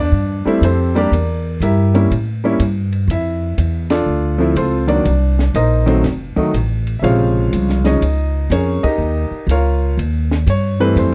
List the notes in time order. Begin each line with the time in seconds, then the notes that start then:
Already playing: E2
0.00 D4 D5
0.12 G2
0.45 G3 A3 C4 E4, muted upright bass stroke
0.61 F2 C4 G4 A4 C5, hi-hat pedal, ride
0.95 G3 A#3 D4 G4 A#4 D5, ride
1.11 E2, ride
1.60 G2 E4 G4 A#4 E5, hi-hat pedal, ride
1.94 G3 A#3 C#4 E4, ride
2.11 A2, ride
2.44 G3 A#3 C#4 E4
2.60 G2, hi-hat pedal, ride
2.92 ride
3.08 F2 E4 E5, ride
3.58 E2, hi-hat pedal, ride
3.90 D4 F4 A4 D5, snare, ride
4.06 D2
4.38 F3 A3 C4 E4
4.56 C#2 C4 F4 A4 C5, hi-hat pedal, ride
4.87 D#3 F#3 A#3 D4 D5, ride
5.05 C2, ride
5.39 snare
5.54 A#1 D#4 A#4 C5 D#5, hi-hat pedal, ride
5.86 D#3 F#3 A3 C4, ride
6.04 F1, snare, ride
6.36 D#3 F#3 A3 D#4, muted upright bass stroke, kick
6.54 A1, hi-hat pedal, ride
6.87 ride
6.99 A#1 C#3 F3 E5
7.03 C3 G#3 F4 C5 C#5 F5, ride
7.53 C2, hi-hat pedal, ride
7.69 snare
7.84 C#3 F3 G#3 C#4 D#4 D#5, snare, ride
8.01 C#2, ride
8.50 F2 C#4 G#4 A#4 C#5, hi-hat pedal, ride
8.83 D#4 G4 A#4 D#5, muted upright bass stroke, kick, ride
8.98 D#2
9.31 muted upright bass stroke
9.47 C#2, hi-hat pedal, ride
9.51 F4 A#4 C#5 F5
9.98 D#2, ride
10.31 snare
10.47 G2 C#5, hi-hat pedal, ride
10.80 E3 G3 A3 C4 B4
10.96 F2 C5, ride